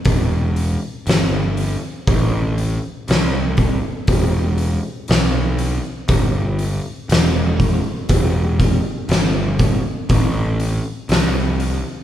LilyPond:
<<
  \new Staff \with { instrumentName = "Picked electric bass" } { \clef bass \time 4/4 \key e \minor \tempo 4 = 60 e,,4 g,,4 a,,4 c,4 | e,,4 b,,4 g,,4 e,,4 | e,,4 g,,4 a,,4 c,4 | }
  \new DrumStaff \with { instrumentName = "Drums" } \drummode { \time 4/4 <hho bd>8 hho8 <hho sn>8 hho8 <hho bd>8 hho8 <hho sn>8 <hho bd>8 | <hho bd>8 hho8 <hho sn>8 hho8 <hho bd>8 hho8 <hho sn>8 <hho bd>8 | <hho bd>8 <hho bd>8 <hho sn>8 <hho bd>8 <hho bd>8 hho8 <hho sn>8 hho8 | }
>>